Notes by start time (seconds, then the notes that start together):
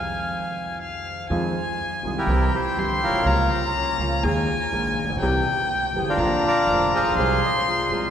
Already playing: F2 D#3 F3 G#3 C4 F4 F5 G#5
0.81 F5
1.30 F2 D#3 F3 G#3 C4 F4 G#5
2.03 C2 C3 D#3 G#3 C4 F4 G#4
2.18 E4 G4 A#4
2.27 C2 C3 E3 G3 C4 G4 G5
2.54 E4 G4 C5
2.77 G1 G2 E3 G3 C4 G4 C6
3.03 A#1 F4 A#4 C#5
3.09 A#1
3.14 B1
3.19 C2
3.25 C#2 C#3 F3 A#3 F4 A#5
3.53 C5
3.67 A#4
3.78 A#3 C#4 F4
3.98 C#2 C#3 F3 A#3 F4
4.23 D#2 D#3 G#3 A#3 G#4 G#5
4.72 A#1 A#2 D#3 G#3 A#3 G#4
5.04 A1
5.10 A#1
5.16 B1
5.20 C2 C3 E3 G3 C4 G4 G5
5.93 G1 G2 E3 G3 C4 G4
5.98 G#4
6.09 D4 F4 A#4
6.17 A#1 A#2 D3 F3 A#3 F4 A#5
6.46 F4 A#4 D5
6.67 F1 F2 D3 F3 A#3 F4
6.94 A1 G#4 C5 F5
7.01 A1 A#1
7.08 A#1 B1
7.15 B1 C2 F3 G#3 C6
7.19 C2 C3 C4 G#4
7.45 D#5
7.57 C#5
7.69 F4 G#4 C5
7.89 C2 C3 F3 G#3 C4 G#4